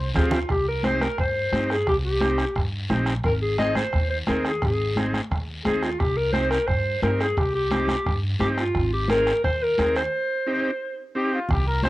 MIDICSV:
0, 0, Header, 1, 7, 480
1, 0, Start_track
1, 0, Key_signature, -3, "minor"
1, 0, Tempo, 343840
1, 690, Time_signature, 4, 2, 24, 8
1, 16601, End_track
2, 0, Start_track
2, 0, Title_t, "Clarinet"
2, 0, Program_c, 0, 71
2, 228, Note_on_c, 0, 68, 94
2, 443, Note_off_c, 0, 68, 0
2, 467, Note_on_c, 0, 65, 86
2, 682, Note_off_c, 0, 65, 0
2, 706, Note_on_c, 0, 67, 87
2, 921, Note_off_c, 0, 67, 0
2, 954, Note_on_c, 0, 70, 88
2, 1182, Note_on_c, 0, 72, 99
2, 1203, Note_off_c, 0, 70, 0
2, 1422, Note_on_c, 0, 70, 88
2, 1443, Note_off_c, 0, 72, 0
2, 1656, Note_off_c, 0, 70, 0
2, 1676, Note_on_c, 0, 72, 93
2, 2396, Note_on_c, 0, 68, 81
2, 2417, Note_off_c, 0, 72, 0
2, 2620, Note_off_c, 0, 68, 0
2, 2628, Note_on_c, 0, 67, 83
2, 2732, Note_off_c, 0, 67, 0
2, 2857, Note_on_c, 0, 67, 72
2, 3759, Note_off_c, 0, 67, 0
2, 4542, Note_on_c, 0, 70, 87
2, 4648, Note_off_c, 0, 70, 0
2, 4774, Note_on_c, 0, 68, 77
2, 4996, Note_off_c, 0, 68, 0
2, 5008, Note_on_c, 0, 75, 97
2, 5233, Note_off_c, 0, 75, 0
2, 5252, Note_on_c, 0, 72, 88
2, 5699, Note_off_c, 0, 72, 0
2, 5725, Note_on_c, 0, 72, 76
2, 5834, Note_off_c, 0, 72, 0
2, 5981, Note_on_c, 0, 70, 80
2, 6200, Note_off_c, 0, 70, 0
2, 6242, Note_on_c, 0, 68, 72
2, 6451, Note_off_c, 0, 68, 0
2, 6481, Note_on_c, 0, 68, 77
2, 7138, Note_off_c, 0, 68, 0
2, 7887, Note_on_c, 0, 68, 84
2, 8134, Note_on_c, 0, 65, 78
2, 8155, Note_off_c, 0, 68, 0
2, 8370, Note_on_c, 0, 67, 88
2, 8391, Note_off_c, 0, 65, 0
2, 8607, Note_on_c, 0, 70, 84
2, 8628, Note_off_c, 0, 67, 0
2, 8815, Note_off_c, 0, 70, 0
2, 8823, Note_on_c, 0, 72, 95
2, 9061, Note_off_c, 0, 72, 0
2, 9077, Note_on_c, 0, 70, 86
2, 9308, Note_on_c, 0, 72, 99
2, 9329, Note_off_c, 0, 70, 0
2, 9801, Note_off_c, 0, 72, 0
2, 9812, Note_on_c, 0, 70, 88
2, 10068, Note_on_c, 0, 68, 81
2, 10089, Note_off_c, 0, 70, 0
2, 10290, Note_on_c, 0, 67, 90
2, 10311, Note_off_c, 0, 68, 0
2, 10532, Note_off_c, 0, 67, 0
2, 10541, Note_on_c, 0, 67, 88
2, 11442, Note_off_c, 0, 67, 0
2, 11729, Note_on_c, 0, 67, 82
2, 11838, Note_off_c, 0, 67, 0
2, 11988, Note_on_c, 0, 65, 80
2, 12428, Note_off_c, 0, 65, 0
2, 12469, Note_on_c, 0, 67, 80
2, 12686, Note_off_c, 0, 67, 0
2, 12703, Note_on_c, 0, 70, 88
2, 13145, Note_off_c, 0, 70, 0
2, 13175, Note_on_c, 0, 72, 89
2, 13437, Note_on_c, 0, 70, 91
2, 13458, Note_off_c, 0, 72, 0
2, 13900, Note_off_c, 0, 70, 0
2, 13908, Note_on_c, 0, 72, 88
2, 15524, Note_off_c, 0, 72, 0
2, 16601, End_track
3, 0, Start_track
3, 0, Title_t, "Trumpet"
3, 0, Program_c, 1, 56
3, 0, Note_on_c, 1, 72, 89
3, 160, Note_off_c, 1, 72, 0
3, 15582, Note_on_c, 1, 67, 73
3, 15801, Note_off_c, 1, 67, 0
3, 15821, Note_on_c, 1, 65, 69
3, 16063, Note_on_c, 1, 67, 75
3, 16084, Note_off_c, 1, 65, 0
3, 16285, Note_off_c, 1, 67, 0
3, 16293, Note_on_c, 1, 70, 84
3, 16516, Note_off_c, 1, 70, 0
3, 16522, Note_on_c, 1, 72, 85
3, 16601, Note_off_c, 1, 72, 0
3, 16601, End_track
4, 0, Start_track
4, 0, Title_t, "Transistor combo organ"
4, 0, Program_c, 2, 18
4, 218, Note_on_c, 2, 60, 84
4, 223, Note_on_c, 2, 65, 73
4, 223, Note_on_c, 2, 67, 87
4, 549, Note_off_c, 2, 60, 0
4, 552, Note_off_c, 2, 65, 0
4, 552, Note_off_c, 2, 67, 0
4, 1168, Note_on_c, 2, 60, 61
4, 1175, Note_on_c, 2, 63, 56
4, 1180, Note_on_c, 2, 67, 69
4, 1505, Note_off_c, 2, 60, 0
4, 1508, Note_off_c, 2, 63, 0
4, 1511, Note_off_c, 2, 67, 0
4, 2129, Note_on_c, 2, 63, 57
4, 2131, Note_on_c, 2, 60, 64
4, 2140, Note_on_c, 2, 67, 69
4, 2466, Note_off_c, 2, 63, 0
4, 2467, Note_off_c, 2, 60, 0
4, 2471, Note_off_c, 2, 67, 0
4, 3078, Note_on_c, 2, 60, 67
4, 3086, Note_on_c, 2, 67, 69
4, 3092, Note_on_c, 2, 63, 60
4, 3420, Note_off_c, 2, 60, 0
4, 3424, Note_off_c, 2, 67, 0
4, 3427, Note_off_c, 2, 63, 0
4, 4038, Note_on_c, 2, 60, 74
4, 4042, Note_on_c, 2, 63, 69
4, 4050, Note_on_c, 2, 67, 78
4, 4381, Note_off_c, 2, 60, 0
4, 4383, Note_off_c, 2, 63, 0
4, 4387, Note_off_c, 2, 67, 0
4, 5008, Note_on_c, 2, 60, 66
4, 5018, Note_on_c, 2, 63, 56
4, 5028, Note_on_c, 2, 68, 73
4, 5346, Note_off_c, 2, 60, 0
4, 5351, Note_off_c, 2, 63, 0
4, 5356, Note_off_c, 2, 68, 0
4, 5966, Note_on_c, 2, 60, 58
4, 5973, Note_on_c, 2, 63, 57
4, 5974, Note_on_c, 2, 68, 73
4, 6305, Note_off_c, 2, 60, 0
4, 6309, Note_off_c, 2, 63, 0
4, 6309, Note_off_c, 2, 68, 0
4, 6944, Note_on_c, 2, 60, 62
4, 6949, Note_on_c, 2, 63, 61
4, 6960, Note_on_c, 2, 68, 71
4, 7275, Note_off_c, 2, 60, 0
4, 7277, Note_off_c, 2, 63, 0
4, 7283, Note_off_c, 2, 68, 0
4, 7906, Note_on_c, 2, 60, 60
4, 7910, Note_on_c, 2, 63, 57
4, 7919, Note_on_c, 2, 68, 68
4, 8236, Note_off_c, 2, 60, 0
4, 8238, Note_off_c, 2, 63, 0
4, 8242, Note_off_c, 2, 68, 0
4, 8857, Note_on_c, 2, 60, 64
4, 8860, Note_on_c, 2, 63, 56
4, 8860, Note_on_c, 2, 67, 74
4, 9192, Note_off_c, 2, 60, 0
4, 9193, Note_off_c, 2, 63, 0
4, 9193, Note_off_c, 2, 67, 0
4, 9814, Note_on_c, 2, 60, 64
4, 9816, Note_on_c, 2, 63, 55
4, 9820, Note_on_c, 2, 67, 68
4, 10150, Note_off_c, 2, 60, 0
4, 10151, Note_off_c, 2, 63, 0
4, 10153, Note_off_c, 2, 67, 0
4, 10771, Note_on_c, 2, 60, 62
4, 10780, Note_on_c, 2, 63, 64
4, 10786, Note_on_c, 2, 67, 75
4, 11108, Note_off_c, 2, 60, 0
4, 11113, Note_off_c, 2, 63, 0
4, 11116, Note_off_c, 2, 67, 0
4, 11723, Note_on_c, 2, 60, 59
4, 11732, Note_on_c, 2, 67, 73
4, 11733, Note_on_c, 2, 63, 57
4, 12065, Note_off_c, 2, 60, 0
4, 12069, Note_off_c, 2, 67, 0
4, 12070, Note_off_c, 2, 63, 0
4, 12687, Note_on_c, 2, 60, 66
4, 12696, Note_on_c, 2, 63, 57
4, 12698, Note_on_c, 2, 68, 74
4, 13027, Note_off_c, 2, 60, 0
4, 13031, Note_off_c, 2, 63, 0
4, 13032, Note_off_c, 2, 68, 0
4, 13653, Note_on_c, 2, 60, 64
4, 13662, Note_on_c, 2, 63, 57
4, 13667, Note_on_c, 2, 68, 67
4, 13989, Note_off_c, 2, 60, 0
4, 13994, Note_off_c, 2, 63, 0
4, 13996, Note_off_c, 2, 68, 0
4, 14608, Note_on_c, 2, 60, 82
4, 14618, Note_on_c, 2, 63, 71
4, 14620, Note_on_c, 2, 67, 90
4, 14947, Note_off_c, 2, 60, 0
4, 14952, Note_off_c, 2, 63, 0
4, 14953, Note_off_c, 2, 67, 0
4, 15566, Note_on_c, 2, 60, 72
4, 15576, Note_on_c, 2, 63, 70
4, 15578, Note_on_c, 2, 67, 81
4, 15906, Note_off_c, 2, 60, 0
4, 15910, Note_off_c, 2, 63, 0
4, 15911, Note_off_c, 2, 67, 0
4, 16536, Note_on_c, 2, 60, 68
4, 16543, Note_on_c, 2, 67, 73
4, 16544, Note_on_c, 2, 63, 61
4, 16601, Note_off_c, 2, 60, 0
4, 16601, Note_off_c, 2, 63, 0
4, 16601, Note_off_c, 2, 67, 0
4, 16601, End_track
5, 0, Start_track
5, 0, Title_t, "Upright bass"
5, 0, Program_c, 3, 32
5, 217, Note_on_c, 3, 38, 96
5, 598, Note_off_c, 3, 38, 0
5, 697, Note_on_c, 3, 36, 86
5, 1462, Note_off_c, 3, 36, 0
5, 1650, Note_on_c, 3, 43, 76
5, 2034, Note_off_c, 3, 43, 0
5, 2121, Note_on_c, 3, 43, 79
5, 2509, Note_off_c, 3, 43, 0
5, 2615, Note_on_c, 3, 36, 84
5, 3382, Note_off_c, 3, 36, 0
5, 3570, Note_on_c, 3, 43, 79
5, 3955, Note_off_c, 3, 43, 0
5, 4048, Note_on_c, 3, 34, 83
5, 4434, Note_off_c, 3, 34, 0
5, 4526, Note_on_c, 3, 32, 85
5, 5297, Note_off_c, 3, 32, 0
5, 5491, Note_on_c, 3, 39, 83
5, 5876, Note_off_c, 3, 39, 0
5, 5984, Note_on_c, 3, 39, 79
5, 6364, Note_off_c, 3, 39, 0
5, 6452, Note_on_c, 3, 32, 84
5, 7221, Note_off_c, 3, 32, 0
5, 7413, Note_on_c, 3, 39, 83
5, 7797, Note_off_c, 3, 39, 0
5, 7898, Note_on_c, 3, 39, 75
5, 8280, Note_off_c, 3, 39, 0
5, 8383, Note_on_c, 3, 36, 87
5, 9148, Note_off_c, 3, 36, 0
5, 9327, Note_on_c, 3, 43, 80
5, 9714, Note_off_c, 3, 43, 0
5, 9806, Note_on_c, 3, 43, 79
5, 10193, Note_off_c, 3, 43, 0
5, 10293, Note_on_c, 3, 36, 86
5, 11061, Note_off_c, 3, 36, 0
5, 11257, Note_on_c, 3, 43, 87
5, 11640, Note_off_c, 3, 43, 0
5, 11731, Note_on_c, 3, 43, 78
5, 12116, Note_off_c, 3, 43, 0
5, 12214, Note_on_c, 3, 32, 88
5, 12982, Note_off_c, 3, 32, 0
5, 13179, Note_on_c, 3, 39, 83
5, 13561, Note_off_c, 3, 39, 0
5, 13655, Note_on_c, 3, 39, 78
5, 14038, Note_off_c, 3, 39, 0
5, 16064, Note_on_c, 3, 36, 94
5, 16601, Note_off_c, 3, 36, 0
5, 16601, End_track
6, 0, Start_track
6, 0, Title_t, "Two-headed folk drums"
6, 215, Note_on_c, 9, 36, 70
6, 217, Note_on_c, 9, 37, 85
6, 354, Note_off_c, 9, 36, 0
6, 357, Note_off_c, 9, 37, 0
6, 443, Note_on_c, 9, 37, 77
6, 583, Note_off_c, 9, 37, 0
6, 684, Note_on_c, 9, 37, 76
6, 694, Note_on_c, 9, 36, 72
6, 823, Note_off_c, 9, 37, 0
6, 833, Note_off_c, 9, 36, 0
6, 1174, Note_on_c, 9, 37, 74
6, 1314, Note_off_c, 9, 37, 0
6, 1416, Note_on_c, 9, 37, 81
6, 1556, Note_off_c, 9, 37, 0
6, 1651, Note_on_c, 9, 37, 73
6, 1654, Note_on_c, 9, 36, 69
6, 1791, Note_off_c, 9, 37, 0
6, 1794, Note_off_c, 9, 36, 0
6, 2130, Note_on_c, 9, 37, 73
6, 2270, Note_off_c, 9, 37, 0
6, 2374, Note_on_c, 9, 37, 73
6, 2514, Note_off_c, 9, 37, 0
6, 2609, Note_on_c, 9, 37, 71
6, 2612, Note_on_c, 9, 36, 75
6, 2749, Note_off_c, 9, 37, 0
6, 2752, Note_off_c, 9, 36, 0
6, 3089, Note_on_c, 9, 37, 72
6, 3229, Note_off_c, 9, 37, 0
6, 3324, Note_on_c, 9, 37, 73
6, 3463, Note_off_c, 9, 37, 0
6, 3571, Note_on_c, 9, 36, 69
6, 3574, Note_on_c, 9, 37, 70
6, 3711, Note_off_c, 9, 36, 0
6, 3714, Note_off_c, 9, 37, 0
6, 4049, Note_on_c, 9, 37, 79
6, 4188, Note_off_c, 9, 37, 0
6, 4274, Note_on_c, 9, 37, 77
6, 4413, Note_off_c, 9, 37, 0
6, 4522, Note_on_c, 9, 37, 73
6, 4525, Note_on_c, 9, 36, 71
6, 4662, Note_off_c, 9, 37, 0
6, 4665, Note_off_c, 9, 36, 0
6, 5002, Note_on_c, 9, 37, 71
6, 5141, Note_off_c, 9, 37, 0
6, 5238, Note_on_c, 9, 37, 82
6, 5378, Note_off_c, 9, 37, 0
6, 5483, Note_on_c, 9, 37, 73
6, 5489, Note_on_c, 9, 36, 75
6, 5622, Note_off_c, 9, 37, 0
6, 5628, Note_off_c, 9, 36, 0
6, 5961, Note_on_c, 9, 37, 72
6, 6101, Note_off_c, 9, 37, 0
6, 6207, Note_on_c, 9, 37, 75
6, 6347, Note_off_c, 9, 37, 0
6, 6450, Note_on_c, 9, 37, 78
6, 6453, Note_on_c, 9, 36, 73
6, 6589, Note_off_c, 9, 37, 0
6, 6592, Note_off_c, 9, 36, 0
6, 6940, Note_on_c, 9, 37, 75
6, 7080, Note_off_c, 9, 37, 0
6, 7178, Note_on_c, 9, 37, 73
6, 7317, Note_off_c, 9, 37, 0
6, 7419, Note_on_c, 9, 36, 68
6, 7421, Note_on_c, 9, 37, 74
6, 7559, Note_off_c, 9, 36, 0
6, 7561, Note_off_c, 9, 37, 0
6, 7890, Note_on_c, 9, 37, 76
6, 8029, Note_off_c, 9, 37, 0
6, 8131, Note_on_c, 9, 37, 73
6, 8271, Note_off_c, 9, 37, 0
6, 8375, Note_on_c, 9, 37, 72
6, 8378, Note_on_c, 9, 36, 75
6, 8514, Note_off_c, 9, 37, 0
6, 8517, Note_off_c, 9, 36, 0
6, 8849, Note_on_c, 9, 37, 70
6, 8988, Note_off_c, 9, 37, 0
6, 9086, Note_on_c, 9, 37, 81
6, 9225, Note_off_c, 9, 37, 0
6, 9321, Note_on_c, 9, 37, 71
6, 9329, Note_on_c, 9, 36, 70
6, 9461, Note_off_c, 9, 37, 0
6, 9469, Note_off_c, 9, 36, 0
6, 9818, Note_on_c, 9, 37, 80
6, 9958, Note_off_c, 9, 37, 0
6, 10062, Note_on_c, 9, 37, 75
6, 10202, Note_off_c, 9, 37, 0
6, 10294, Note_on_c, 9, 36, 76
6, 10300, Note_on_c, 9, 37, 74
6, 10433, Note_off_c, 9, 36, 0
6, 10440, Note_off_c, 9, 37, 0
6, 10771, Note_on_c, 9, 37, 77
6, 10911, Note_off_c, 9, 37, 0
6, 11014, Note_on_c, 9, 37, 76
6, 11154, Note_off_c, 9, 37, 0
6, 11256, Note_on_c, 9, 36, 76
6, 11261, Note_on_c, 9, 37, 70
6, 11395, Note_off_c, 9, 36, 0
6, 11401, Note_off_c, 9, 37, 0
6, 11734, Note_on_c, 9, 37, 71
6, 11874, Note_off_c, 9, 37, 0
6, 11974, Note_on_c, 9, 37, 76
6, 12114, Note_off_c, 9, 37, 0
6, 12213, Note_on_c, 9, 37, 71
6, 12217, Note_on_c, 9, 36, 76
6, 12353, Note_off_c, 9, 37, 0
6, 12357, Note_off_c, 9, 36, 0
6, 12701, Note_on_c, 9, 37, 77
6, 12841, Note_off_c, 9, 37, 0
6, 12940, Note_on_c, 9, 37, 82
6, 13079, Note_off_c, 9, 37, 0
6, 13180, Note_on_c, 9, 36, 77
6, 13184, Note_on_c, 9, 37, 68
6, 13320, Note_off_c, 9, 36, 0
6, 13324, Note_off_c, 9, 37, 0
6, 13667, Note_on_c, 9, 37, 77
6, 13807, Note_off_c, 9, 37, 0
6, 13908, Note_on_c, 9, 37, 70
6, 14048, Note_off_c, 9, 37, 0
6, 16058, Note_on_c, 9, 36, 76
6, 16062, Note_on_c, 9, 37, 76
6, 16198, Note_off_c, 9, 36, 0
6, 16201, Note_off_c, 9, 37, 0
6, 16543, Note_on_c, 9, 37, 81
6, 16601, Note_off_c, 9, 37, 0
6, 16601, End_track
7, 0, Start_track
7, 0, Title_t, "Drums"
7, 199, Note_on_c, 9, 64, 73
7, 220, Note_on_c, 9, 73, 64
7, 339, Note_off_c, 9, 64, 0
7, 360, Note_off_c, 9, 73, 0
7, 434, Note_on_c, 9, 64, 97
7, 461, Note_on_c, 9, 73, 69
7, 574, Note_off_c, 9, 64, 0
7, 600, Note_off_c, 9, 73, 0
7, 703, Note_on_c, 9, 74, 60
7, 843, Note_off_c, 9, 74, 0
7, 1162, Note_on_c, 9, 63, 77
7, 1174, Note_on_c, 9, 73, 62
7, 1301, Note_off_c, 9, 63, 0
7, 1313, Note_off_c, 9, 73, 0
7, 1399, Note_on_c, 9, 63, 65
7, 1422, Note_on_c, 9, 73, 66
7, 1539, Note_off_c, 9, 63, 0
7, 1561, Note_off_c, 9, 73, 0
7, 1667, Note_on_c, 9, 74, 60
7, 1806, Note_off_c, 9, 74, 0
7, 2130, Note_on_c, 9, 63, 73
7, 2154, Note_on_c, 9, 73, 65
7, 2269, Note_off_c, 9, 63, 0
7, 2293, Note_off_c, 9, 73, 0
7, 2392, Note_on_c, 9, 73, 63
7, 2532, Note_off_c, 9, 73, 0
7, 2611, Note_on_c, 9, 74, 65
7, 2750, Note_off_c, 9, 74, 0
7, 3079, Note_on_c, 9, 63, 76
7, 3102, Note_on_c, 9, 73, 62
7, 3218, Note_off_c, 9, 63, 0
7, 3241, Note_off_c, 9, 73, 0
7, 3333, Note_on_c, 9, 73, 68
7, 3473, Note_off_c, 9, 73, 0
7, 3567, Note_on_c, 9, 74, 61
7, 3706, Note_off_c, 9, 74, 0
7, 4048, Note_on_c, 9, 63, 71
7, 4049, Note_on_c, 9, 73, 59
7, 4187, Note_off_c, 9, 63, 0
7, 4188, Note_off_c, 9, 73, 0
7, 4280, Note_on_c, 9, 73, 68
7, 4420, Note_off_c, 9, 73, 0
7, 4515, Note_on_c, 9, 74, 61
7, 4655, Note_off_c, 9, 74, 0
7, 5007, Note_on_c, 9, 63, 77
7, 5012, Note_on_c, 9, 73, 61
7, 5146, Note_off_c, 9, 63, 0
7, 5151, Note_off_c, 9, 73, 0
7, 5246, Note_on_c, 9, 63, 62
7, 5256, Note_on_c, 9, 73, 72
7, 5386, Note_off_c, 9, 63, 0
7, 5395, Note_off_c, 9, 73, 0
7, 5497, Note_on_c, 9, 74, 61
7, 5637, Note_off_c, 9, 74, 0
7, 5959, Note_on_c, 9, 63, 71
7, 5979, Note_on_c, 9, 73, 61
7, 6099, Note_off_c, 9, 63, 0
7, 6118, Note_off_c, 9, 73, 0
7, 6219, Note_on_c, 9, 73, 66
7, 6359, Note_off_c, 9, 73, 0
7, 6463, Note_on_c, 9, 74, 65
7, 6602, Note_off_c, 9, 74, 0
7, 6926, Note_on_c, 9, 63, 74
7, 6939, Note_on_c, 9, 73, 63
7, 7066, Note_off_c, 9, 63, 0
7, 7078, Note_off_c, 9, 73, 0
7, 7163, Note_on_c, 9, 63, 59
7, 7185, Note_on_c, 9, 73, 64
7, 7303, Note_off_c, 9, 63, 0
7, 7325, Note_off_c, 9, 73, 0
7, 7419, Note_on_c, 9, 74, 60
7, 7558, Note_off_c, 9, 74, 0
7, 7885, Note_on_c, 9, 63, 73
7, 7897, Note_on_c, 9, 73, 64
7, 8025, Note_off_c, 9, 63, 0
7, 8037, Note_off_c, 9, 73, 0
7, 8137, Note_on_c, 9, 73, 66
7, 8276, Note_off_c, 9, 73, 0
7, 8377, Note_on_c, 9, 74, 60
7, 8516, Note_off_c, 9, 74, 0
7, 8836, Note_on_c, 9, 63, 76
7, 8863, Note_on_c, 9, 73, 64
7, 8975, Note_off_c, 9, 63, 0
7, 9003, Note_off_c, 9, 73, 0
7, 9102, Note_on_c, 9, 73, 68
7, 9242, Note_off_c, 9, 73, 0
7, 9346, Note_on_c, 9, 74, 61
7, 9486, Note_off_c, 9, 74, 0
7, 9808, Note_on_c, 9, 63, 79
7, 9811, Note_on_c, 9, 73, 58
7, 9948, Note_off_c, 9, 63, 0
7, 9951, Note_off_c, 9, 73, 0
7, 10059, Note_on_c, 9, 73, 67
7, 10198, Note_off_c, 9, 73, 0
7, 10289, Note_on_c, 9, 74, 62
7, 10429, Note_off_c, 9, 74, 0
7, 10764, Note_on_c, 9, 63, 73
7, 10770, Note_on_c, 9, 73, 63
7, 10904, Note_off_c, 9, 63, 0
7, 10910, Note_off_c, 9, 73, 0
7, 10999, Note_on_c, 9, 63, 63
7, 11016, Note_on_c, 9, 73, 68
7, 11139, Note_off_c, 9, 63, 0
7, 11155, Note_off_c, 9, 73, 0
7, 11260, Note_on_c, 9, 74, 58
7, 11400, Note_off_c, 9, 74, 0
7, 11721, Note_on_c, 9, 63, 75
7, 11743, Note_on_c, 9, 73, 59
7, 11861, Note_off_c, 9, 63, 0
7, 11882, Note_off_c, 9, 73, 0
7, 11978, Note_on_c, 9, 73, 66
7, 12117, Note_off_c, 9, 73, 0
7, 12216, Note_on_c, 9, 74, 63
7, 12356, Note_off_c, 9, 74, 0
7, 12677, Note_on_c, 9, 63, 77
7, 12707, Note_on_c, 9, 73, 66
7, 12817, Note_off_c, 9, 63, 0
7, 12846, Note_off_c, 9, 73, 0
7, 12944, Note_on_c, 9, 73, 66
7, 13083, Note_off_c, 9, 73, 0
7, 13181, Note_on_c, 9, 74, 59
7, 13321, Note_off_c, 9, 74, 0
7, 13650, Note_on_c, 9, 63, 76
7, 13660, Note_on_c, 9, 73, 66
7, 13790, Note_off_c, 9, 63, 0
7, 13800, Note_off_c, 9, 73, 0
7, 13899, Note_on_c, 9, 73, 66
7, 14039, Note_off_c, 9, 73, 0
7, 16035, Note_on_c, 9, 64, 72
7, 16062, Note_on_c, 9, 74, 61
7, 16175, Note_off_c, 9, 64, 0
7, 16202, Note_off_c, 9, 74, 0
7, 16510, Note_on_c, 9, 63, 79
7, 16542, Note_on_c, 9, 73, 66
7, 16601, Note_off_c, 9, 63, 0
7, 16601, Note_off_c, 9, 73, 0
7, 16601, End_track
0, 0, End_of_file